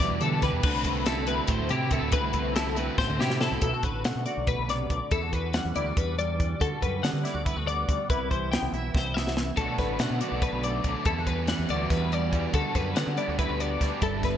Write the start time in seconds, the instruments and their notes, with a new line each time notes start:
Already playing: clean electric guitar E2 E3 G3 D4
0.00 clean electric guitar B2 D5, overdriven electric guitar E3 G3 B3 E4, snare
0.10 fingered electric bass E2
0.21 fingered electric bass D3, overdriven electric guitar E3 G3 B3 E4, clean electric guitar D4 A4, closed hi-hat
0.42 overdriven electric guitar E3 G3 B3 E4, clean electric guitar G4 B4, kick, snare, closed hi-hat
0.53 fingered electric bass E2
0.63 fingered electric bass D2, overdriven electric guitar D3 A3 C4 F#4, clean electric guitar D3 B4, kick, crash
0.74 fingered electric bass C2
0.84 clean electric guitar A3, overdriven electric guitar A3 C4 F#4, kick, closed hi-hat
1.05 overdriven electric guitar D3 A3 C4 F#4, clean electric guitar E4 A4, snare, closed hi-hat
1.26 overdriven electric guitar D3 A3 C4 F#4, clean electric guitar C4 B4, closed hi-hat
1.47 fingered electric bass A1, clean electric guitar A2 C5, overdriven electric guitar D3 A3 C4 F#4, kick, closed hi-hat
1.59 fingered electric bass D2
1.69 fingered electric bass C3, overdriven electric guitar D3 A3 C4 F#4, clean electric guitar E4 G4, closed hi-hat
1.91 overdriven electric guitar D3 A3 C4 F#4, clean electric guitar E4 A4, kick, closed hi-hat
2.02 fingered electric bass D2
2.12 fingered electric bass D2, overdriven electric guitar D3 A3 C4 F#4, clean electric guitar D3 B4, kick, closed hi-hat
2.23 fingered electric bass C2
2.33 clean electric guitar A3, overdriven electric guitar A3 C4 F#4, kick, closed hi-hat
2.54 overdriven electric guitar D3 A3 C4 F#4, clean electric guitar E4 A4, snare, closed hi-hat
2.75 overdriven electric guitar D3 A3 C4 F#4, clean electric guitar C4 B4, closed hi-hat
2.96 fingered electric bass A1, clean electric guitar A2 C5, overdriven electric guitar D3 A3 C4 F#4, kick, snare
3.09 fingered electric bass D2
3.18 fingered electric bass C3, overdriven electric guitar D3 A3 C4 F#4, clean electric guitar E4 G4, snare
3.30 snare
3.39 overdriven electric guitar D3 A3 C4 F#4, clean electric guitar E4 A4, snare
3.51 fingered electric bass C2
3.61 fingered electric bass B1, clean electric guitar B2 E4 A4, kick, closed hi-hat
3.73 clean electric guitar F#4
3.83 fingered electric bass A1, clean electric guitar D3 B4, kick, closed hi-hat
4.04 fingered electric bass B2, clean electric guitar A3 F#5, snare, closed hi-hat
4.16 fingered electric bass B2
4.26 clean electric guitar F#4 D5, closed hi-hat
4.38 fingered electric bass B1
4.47 clean electric guitar B2 B4, kick, closed hi-hat
4.59 fingered electric bass B1
4.69 clean electric guitar C3 D5, snare, closed hi-hat
4.90 fingered electric bass B1, clean electric guitar D3, kick, closed hi-hat
5.11 clean electric guitar E2 E4 A4, fingered electric bass E2, kick, closed hi-hat
5.22 clean electric guitar F#4
5.32 clean electric guitar E3 B4, kick, closed hi-hat
5.53 clean electric guitar G3 F#5, snare, closed hi-hat
5.65 fingered electric bass E2
5.75 fingered electric bass D2, clean electric guitar E4 D5, closed hi-hat
5.86 clean electric guitar F#4
5.97 fingered electric bass E2, clean electric guitar D4 B4, kick, closed hi-hat
6.18 clean electric guitar G3 D5, closed hi-hat
6.39 clean electric guitar E3, kick, closed hi-hat
6.60 fingered electric bass D2, clean electric guitar D3 F#4 A4, kick, closed hi-hat
6.82 fingered electric bass F#2, clean electric guitar G3 B4, kick, closed hi-hat
7.03 fingered electric bass D3, clean electric guitar B3 F#5, snare, closed hi-hat
7.13 fingered electric bass D3
7.24 clean electric guitar E4 D5, snare, closed hi-hat
7.34 fingered electric bass D2, clean electric guitar F#4
7.45 clean electric guitar E4 B4, kick, closed hi-hat
7.56 fingered electric bass D2, clean electric guitar F#4
7.67 clean electric guitar B3 D5, closed hi-hat
7.88 fingered electric bass D2, clean electric guitar G3, kick, closed hi-hat
8.10 fingered electric bass C2, clean electric guitar C3 E4 B4, kick, closed hi-hat
8.31 clean electric guitar E3 C5, kick, closed hi-hat
8.52 clean electric guitar B3 G5, snare, closed hi-hat
8.62 fingered electric bass C2
8.72 fingered electric bass B1, clean electric guitar E4 E5, closed hi-hat
8.94 fingered electric bass C2, clean electric guitar C4 C5, kick, snare
9.14 clean electric guitar B3 E5, snare
9.27 snare
9.37 clean electric guitar E3, snare
9.57 fingered electric bass B1, overdriven electric guitar B2 F#3 B3 D4, clean electric guitar B2 D3 A3 D4 A4, kick, closed hi-hat
9.61 clean electric guitar F#4
9.78 fingered electric bass A1, clean electric guitar D3 B4, kick, snare, closed hi-hat
9.99 fingered electric bass B2, overdriven electric guitar B2 F#3 B3 D4, clean electric guitar A3 F#5, snare, closed hi-hat
10.11 fingered electric bass B2
10.21 overdriven electric guitar F#3 B3 D4, clean electric guitar F#4 D5, closed hi-hat
10.32 fingered electric bass B1
10.42 clean electric guitar D4 B4, kick, closed hi-hat
10.53 fingered electric bass B1
10.63 clean electric guitar A3 D5, closed hi-hat
10.83 fingered electric bass B1, overdriven electric guitar B2 F#3 B3 D4, clean electric guitar D3, kick, closed hi-hat
11.05 fingered electric bass E2, clean electric guitar E2 E4 A4, overdriven electric guitar E3 G3 B3 E4, kick, closed hi-hat
11.18 clean electric guitar F#4
11.27 clean electric guitar E3 B4, kick, closed hi-hat
11.47 overdriven electric guitar E3 G3 B3 E4, clean electric guitar G3 F#5, snare, closed hi-hat
11.59 fingered electric bass E2
11.69 fingered electric bass D2, overdriven electric guitar G3 B3 E4, clean electric guitar F#4 D5, closed hi-hat
11.90 fingered electric bass E2, clean electric guitar D4 B4, kick, snare, closed hi-hat
12.12 clean electric guitar G3 D5, closed hi-hat
12.32 overdriven electric guitar E3 G3 B3 E4, clean electric guitar E3, kick, closed hi-hat
12.53 fingered electric bass D2, overdriven electric guitar D3 G3 B3 D4, clean electric guitar D3 F#4 A4, kick, closed hi-hat
12.75 fingered electric bass F#2, clean electric guitar G3 B4, kick, closed hi-hat
12.95 overdriven electric guitar D3 G3 B3 D4, fingered electric bass D3, clean electric guitar B3 F#5, snare, closed hi-hat
13.07 fingered electric bass D3
13.17 overdriven electric guitar G3 B3 D4, clean electric guitar E4 D5, closed hi-hat
13.28 fingered electric bass D2, clean electric guitar F#4
13.39 clean electric guitar E4 B4, kick, closed hi-hat
13.49 fingered electric bass D2, clean electric guitar F#4
13.59 clean electric guitar B3 D5, closed hi-hat
13.80 fingered electric bass D2, overdriven electric guitar D3 G3 B3 D4, clean electric guitar G3, kick, snare, closed hi-hat
14.01 fingered electric bass G1, clean electric guitar G2 E4 A4, overdriven electric guitar G2 D3 G3 B3 D4, kick, closed hi-hat
14.23 clean electric guitar D3 B4, kick, snare, closed hi-hat